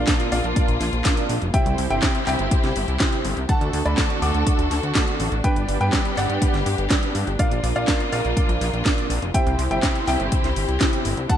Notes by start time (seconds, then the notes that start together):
Already playing: A#2 A#3 D4 F4 A#4 D5 F5
0.07 kick, snare, clap, closed hi-hat
0.20 closed hi-hat
0.32 A#1 A#2 D4 F4 A#4 D5 F5, open hi-hat
0.44 A#1, closed hi-hat
0.56 kick, closed hi-hat
0.68 A#1, closed hi-hat
0.81 A#1, snare, open hi-hat
0.93 A#1, closed hi-hat
1.05 A#2 D4 F4 A#4 D5, kick, snare, clap, closed hi-hat
1.17 closed hi-hat
1.29 A#1, open hi-hat
1.42 F1, closed hi-hat
1.54 C3 C4 E4 G4 C5 E5 G5, kick, closed hi-hat
1.66 C2, closed hi-hat
1.78 C2, open hi-hat
1.90 G1 C3 C4 E4 G4 C5 E5 G5, closed hi-hat
2.03 kick, snare, clap, closed hi-hat
2.15 closed hi-hat
2.27 C2 C3 C4 E4 G4 C5 E5 G5, clap, open hi-hat
2.39 G1, closed hi-hat
2.51 kick, closed hi-hat
2.64 C2, snare, closed hi-hat
2.76 G1, open hi-hat
2.88 C2, closed hi-hat
3.00 C3 C4 E4 G4 C5, kick, snare, clap, closed hi-hat
3.12 closed hi-hat
3.25 G1, open hi-hat
3.37 C2, closed hi-hat
3.49 D3 A3 D4 F#4 A4 F#5 A5, kick, closed hi-hat
3.61 D2, closed hi-hat
3.73 D2, open hi-hat
3.85 D2 D3 A3 D4 F#4 A4 D5 B5, closed hi-hat
3.98 kick, snare, clap, closed hi-hat
4.10 closed hi-hat
4.22 D2 D3 A3 D4 F#4 A4 F#5 D6, open hi-hat
4.34 D2, closed hi-hat
4.47 kick, closed hi-hat
4.59 D2, closed hi-hat
4.71 D2, snare, open hi-hat
4.83 D2, closed hi-hat
4.95 D3 A3 D4 F#4 A4, kick, snare, clap, closed hi-hat
5.08 closed hi-hat
5.20 A1, open hi-hat
5.32 A1, closed hi-hat
5.44 G3 B3 D4 G4 B4 D5 G5, kick, closed hi-hat
5.56 G1, closed hi-hat
5.68 G1, open hi-hat
5.81 G2 G3 D4 G4 B4 D5 G5, closed hi-hat
5.93 kick, snare, clap, closed hi-hat
6.05 closed hi-hat
6.17 G1 G3 D4 G4 B4 D5 F#5, clap, open hi-hat
6.29 G2, closed hi-hat
6.42 kick, closed hi-hat
6.54 G1, snare, closed hi-hat
6.66 G2, open hi-hat
6.78 G1, closed hi-hat
6.90 G3 D4 G4 B4 D5, kick, snare, clap, closed hi-hat
7.03 closed hi-hat
7.15 G2, open hi-hat
7.27 G1, closed hi-hat
7.39 A#2 A#3 D4 F4 A#4 D5 F5, kick, closed hi-hat
7.51 A#1, closed hi-hat
7.64 A#1, open hi-hat
7.76 A#1 A#2 D4 F4 A#4 D5 F5, closed hi-hat
7.88 kick, snare, clap, closed hi-hat
8.00 closed hi-hat
8.12 A#1 A#2 D4 F4 A#4 D5 F5, open hi-hat
8.25 A#1, closed hi-hat
8.37 kick, closed hi-hat
8.49 A#1, closed hi-hat
8.61 A#1, snare, open hi-hat
8.73 A#1, closed hi-hat
8.86 A#2 D4 F4 A#4 D5, kick, snare, clap, closed hi-hat
8.98 closed hi-hat
9.10 A#1, open hi-hat
9.22 F1, closed hi-hat
9.34 C3 C4 E4 G4 C5 E5 G5, kick, closed hi-hat
9.46 C2, closed hi-hat
9.59 C2, open hi-hat
9.71 G1 C3 C4 E4 G4 C5 E5 G5, closed hi-hat
9.83 kick, snare, clap, closed hi-hat
9.95 closed hi-hat
10.08 C2 C3 C4 E4 G4 C5 E5 G5, clap, open hi-hat
10.20 G1, closed hi-hat
10.32 kick, closed hi-hat
10.44 C2, snare, closed hi-hat
10.56 G1, open hi-hat
10.68 C2, closed hi-hat
10.81 C3 C4 E4 G4 C5, kick, snare, clap, closed hi-hat
10.93 closed hi-hat
11.05 G1, open hi-hat
11.17 C2, closed hi-hat
11.29 D3 A3 D4 F#4 A4 F#5 A5, kick, closed hi-hat